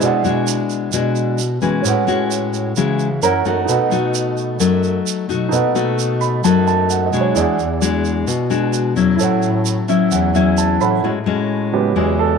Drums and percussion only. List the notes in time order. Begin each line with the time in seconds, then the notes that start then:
0.01 shaker
0.25 shaker
0.47 shaker
0.70 shaker
0.92 shaker
1.16 shaker
1.39 shaker
1.62 shaker
1.85 shaker
2.08 shaker
2.31 shaker
2.54 shaker
2.76 shaker
2.99 shaker
3.23 shaker
3.45 shaker
3.69 shaker
3.92 shaker
4.14 shaker
4.37 shaker
4.60 shaker
4.84 shaker
5.07 shaker
5.30 shaker
5.53 shaker
5.76 shaker
5.99 shaker
6.21 shaker
6.44 shaker
6.67 shaker
6.90 shaker
7.13 shaker
7.36 shaker
7.59 shaker
7.82 shaker
8.05 shaker
8.28 shaker
8.51 shaker
8.73 shaker
8.97 shaker
9.19 shaker
9.43 shaker
9.66 shaker
9.89 shaker
10.11 shaker
10.35 shaker
10.57 shaker
10.81 shaker